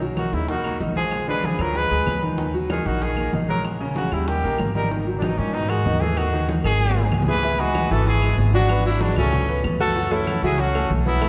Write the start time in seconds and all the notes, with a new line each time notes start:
Already playing: B1
0.01 F#3 F#4, high bongo, high conga
0.16 D#3 F#4, high bongo, high conga, claves
0.32 D#2 C#3 D#4 E4 D#5, high bongo, high conga
0.48 D#3 F#4, high bongo, high conga
0.64 A#3 A#4, high conga, claves
0.80 A#1 D#4 D#5, high bongo, low bongo, high conga
0.96 F3 G#3 G#4, high bongo, high conga
1.11 high bongo, high conga, claves
1.28 D3 G#3 D4 B4, high bongo, high conga
1.44 F3 G#4, high bongo, high conga
1.59 D2 F3 F#3 F4 A#4, high bongo, claves
1.75 G#3 B4, high bongo, high conga
1.91 D2 G#3 G#4, high conga
2.06 D#2, high bongo, low bongo, high conga, claves
2.22 D#3 D#4, high bongo, high conga
2.38 D#3 D#4, high bongo, high conga
2.54 F#3 F#4, high bongo, high conga
2.70 D#3 G#4, high bongo, high conga, claves
2.86 A#1 D#3 D#4 F#4 D#5, high bongo, high conga
3.01 D#3 G#4, high bongo, high conga
3.17 A#3 A#4, high conga, claves
3.33 A#1 D#4 D#5, high bongo, low bongo, high conga
3.48 F#3 G#3 G#4 A#4, high bongo, high conga
3.64 high bongo, high conga, claves
3.80 C#3 C#4, high bongo, high conga
3.96 C#3 F#4, high bongo, high conga
4.12 D#2 C#3 G3 E4 G4, high bongo, claves
4.28 D#3 G4, high bongo, high conga
4.43 A#1 A#3 A#4, high conga
4.58 G#1, high bongo, low bongo, high conga, claves
4.75 D#3 G3 D#4 A#4, high bongo, high conga
4.91 D#3 D#4, high bongo, high conga
5.07 F#3 F#4, high bongo, high conga
5.18 A#2 D4
5.22 B2 D#4, high bongo, high conga, claves
5.38 G#2 A#2 C#4 D#4 D#5, high bongo, high conga
5.53 B2 D#4, high bongo, high conga
5.69 D#3 G#3 F#4 G#4, high conga, claves
5.85 D#2 D#4 D#5, high bongo, low bongo, high conga
6.00 E3 A3 G#4 A4, high bongo, high conga
6.17 D#3 F#4, high bongo, high conga, claves
6.33 D#3 D#4, high bongo, high conga
6.49 high bongo, high conga
6.64 G#1 D#3 F#3 F#4 G#4, claves
6.80 high bongo, high conga
6.91 low bongo
6.96 G#3 G#4, high conga
7.02 low bongo
7.11 C#2, low bongo, high conga, claves
7.22 low bongo
7.27 E3 E4 G#4 B4, high conga
7.33 low bongo
7.43 E3 E4 E5, high bongo, high conga
7.59 G#3 D#4 F#4 G#4 G#5, high bongo, high conga
7.75 high bongo, high conga, claves
7.90 G#1 E3 E4 F#4 A4 E5, high bongo, high conga
8.06 E4 G#4, high bongo, high conga
8.22 G#3 G#4 G#5, high conga, claves
8.38 G#1, high bongo, low bongo, high conga
8.53 F#3 D4 F#4 F#5, high bongo, high conga
8.69 B3 B4 B5, high bongo, high conga, claves
8.85 F#3 D4 E4 F#4 F#5, high bongo, high conga
9.01 G#3 D4, high bongo, high conga
9.16 C#2 F#3 A3 C#4 G#4 G#5, high bongo, low conga, claves
9.32 high bongo, high conga, low conga
9.48 B3 B4 B5, high conga
9.64 F#2, high bongo, low bongo, high conga, claves
9.80 A3 F#4 A4 A5, high bongo, high conga
9.96 F#3 F#4 F#5, high bongo, high conga
10.11 A3 C#4 E4 A4 A5, high bongo, high conga
10.27 high bongo, high conga, claves
10.43 C#2 F#3 E4 F#4 G#4 F#5, high bongo, high conga
10.58 C#4 F#4, high bongo, high conga
10.75 A3 A4 A5, high conga, claves
10.90 B1, high bongo, low bongo, high conga
11.06 F#3 B3 E4 F#4 F#5, high bongo, high conga
11.22 A3 A4 A5, high bongo, high conga, claves